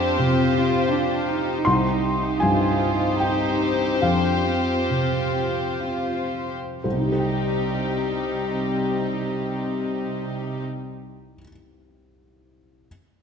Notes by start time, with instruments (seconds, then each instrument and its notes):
Already playing: felt piano F2 F5, viola section C4 F4, cello section D4, violin section G4 C5
0.17 felt piano C3, cello section C4
0.55 cello section F4
0.92 cello section D4
1.27 cello section D#4
1.64 felt piano C2 C6, viola section C4 D#4, violin section G4 C5
2.40 felt piano G2 G#5, cello section F4
3.19 cello section D#4, felt piano G5
4.01 felt piano F2 F5, cello section D4, viola section F4
4.45 cello section C4
4.90 felt piano C3
5.83 cello section F4
6.83 felt piano C2 C5, cello section C3, viola section G3 C4, violin section D#4 G4
6.91 felt piano C3
6.98 felt piano D#4
7.05 felt piano G4
7.12 felt piano C5
7.19 felt piano G5